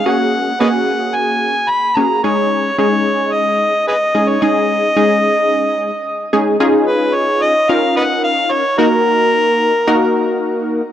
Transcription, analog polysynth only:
\new Staff \with { instrumentName = "Analog polysynth" } { \time 4/4 \key des \mixolydian \tempo 4 = 110 <bes des' ges' aes'>4 <bes des' ges' aes'>4. r4 <bes des' ges' aes'>8 | <aes des' ees' aes'>4 <aes des' ees' aes'>4. r4 <aes des' ees' aes'>8 | <aes des' ees' aes'>4 <aes des' ees' aes'>4. r4 <aes des' ees' aes'>8 | <des' ees' f' aes'>4. r8 <des' ees' f' bes'>4. r8 |
<bes ees' ges' bes'>4. r8 <bes ees' ges' bes'>4. r8 | }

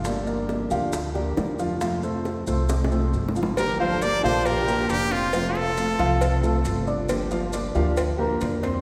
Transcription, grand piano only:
\new Staff \with { instrumentName = "Grand piano" } { \time 4/4 \key g \minor \tempo 4 = 136 <f f' f''>8 <bes bes' d''>4 <f f' f''>4 <bes bes' d''>4 <f f' f''>8 | <f f' f''>8 <a a' c''>4 <a a' c''>4 <a a' c''>4 <f f' f''>8 | r8 <f f' f''>8 <d' d'' d'''>8 <f f' f''>4 <bes bes' bes''>4 <c' c'' c'''>8 | <f f' f''>4 <a a' a''>8 <f f' f''>4 <a a' a''>4 <d' d'' d'''>8~ |
<d' d'' d'''>8 <f f' f''>8 <d' d'' d'''>8 <f f' f''>4 <bes bes' bes''>4 <c' c'' c'''>8 | }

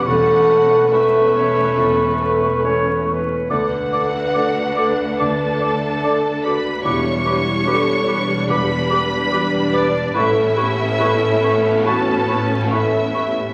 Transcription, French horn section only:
\new Staff \with { instrumentName = "French horn section" } { \time 4/4 \key a \mixolydian \tempo 4 = 71 a'2.~ a'8 r8 | b'2. a'8 fis'8 | e'4 a'8 g'8 b'8 g'8 g'8 b'8 | a'8 g'8 a'4 fis'8 e'8 a'8 g'8 | }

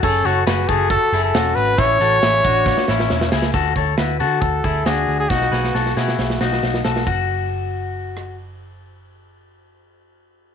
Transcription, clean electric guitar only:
\new Staff \with { instrumentName = "Clean electric guitar" } { \time 4/4 \key b \dorian \tempo 4 = 136 <cis' gis'>8 <a' cis''>8 <gis' b'>8 <fis' a'>4 <e' gis'>8 <cis' fis'>4 | <cis' e'>8 <fis' a'>8 <e' gis'>8 <d' fis'>4 <cis' e'>4 <e' gis'>8 | <fis' a'>8 <a' cis''>8 <fis' b'>8 <fis' a'>4 <e' gis'>8 <d' fis'>4 | <dis' fis'>8 <gis' b'>8 <fis' a'>8 <e' gis'>4 <dis' fis'>4 <fis' a'>8 |
fis'2. r4 | r1 | }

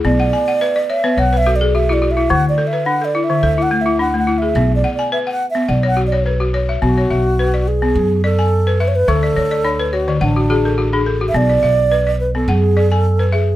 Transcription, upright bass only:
\new Staff \with { instrumentName = "Upright bass" } { \clef bass \time 4/4 \key b \dorian \tempo 4 = 106 b,,8 r4. b,,2 | d,8 r4. d,2 | b,,8 r4. b,,2 | b,,8 b,,4. fis,2 |
d,8 d,4. a,,2 | b,,8 b,,4. fis,2 | }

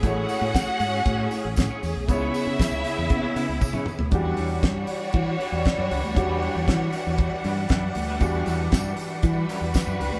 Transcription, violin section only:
\new Staff \with { instrumentName = "Violin section" } { \time 4/4 \key e \mixolydian \tempo 4 = 117 <fis' fis''>2.~ <fis' fis''>8 r8 | <e' e''>2.~ <e' e''>8 r8 | <g fis' cis''>1~ | <g fis' cis''>1 |
r2 <g fis' b'>2 | }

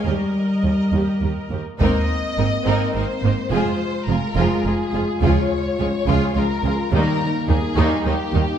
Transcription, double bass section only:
\new Staff \with { instrumentName = "Double bass section" } { \clef bass \time 3/4 \key aes \major \tempo 4 = 105 ees,8 r8 ees,8 ees,8 ees,8 ees,8 | aes,,8 r8 aes,,8 aes,,8 aes,,8 aes,,8 | f,,8 r8 f,,8 f,,8 f,,8 f,,8 | des,8 r8 des,8 des,8 des,8 des,8 |
ees,8 r8 ees,8 ees,8 ees,8 ees,8 | }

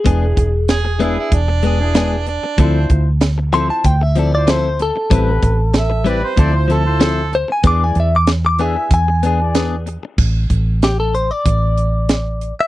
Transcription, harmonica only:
\new Staff \with { instrumentName = "Harmonica" } { \time 4/4 \key e \phrygian \tempo 4 = 95 r4 gis'8 e'16 e'16 d'4. d'8~ | d'8 r2. r8 | r4 e''8 d''16 c''16 d''16 c''16 a'8 a'8 r8 | r1 |
r1 | }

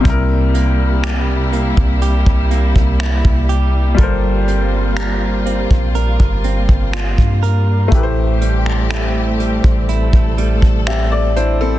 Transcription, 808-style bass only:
\new Staff \with { instrumentName = "808-style bass" } { \clef bass \time 4/4 \key g \dorian \tempo 4 = 61 c,4.~ c,16 c,8 c,8 c,8 c,8. | g,,4.~ g,,16 bes,,8 g,,8 g,,8 g,8. | a,,4.~ a,,16 a,,8 a,,8 a,,4~ a,,16 | }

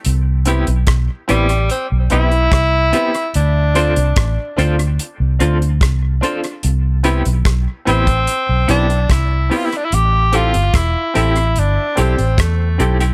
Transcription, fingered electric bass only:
\new Staff \with { instrumentName = "Fingered electric bass" } { \clef bass \time 4/4 \key c \major \tempo 4 = 73 c,8. b,,16 b,,16 r16 a,,8 r16 b,,16 b,,8 c,8 r8 | d,8. c,16 a,,16 r16 d,8 r16 c,16 d,8 c,8 r8 | c,8. b,,16 b,,16 r16 a,,8 r16 b,,16 b,,8 c,8 r8 | a,,8. g,,16 e,,16 r16 a,,8 g,,16 r16 b,,16 a,,16 e,8 b,,8 | }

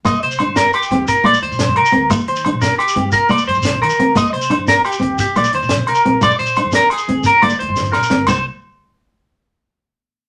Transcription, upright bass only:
\new Staff \with { instrumentName = "Upright bass" } { \clef bass \time 12/8 \key c \minor \tempo 4. = 116 c,16 r16 c8. g,8 r8. ees,8 r8 bes,,16 r16 ees,16 bes,16 bes,,16 g,16 c16 r16 d,8 | ees,16 r16 ees8. bes,,8 r8. g,8 r8 c,16 r16 g,16 c16 c,16 bes,,16 ees16 r16 d,8 | c,16 r16 c8. g,8 r8. ees,8 r8 bes,,16 r16 ees,16 bes,16 bes,,16 g,16 c16 r16 bes,,8 | bes,,16 r16 bes,8. f,8 r8. d,8 r8 g,,16 r16 d,16 g,16 g,,16 f,16 bes,16 r16 g,,8 |
c,8 r1 r4. | }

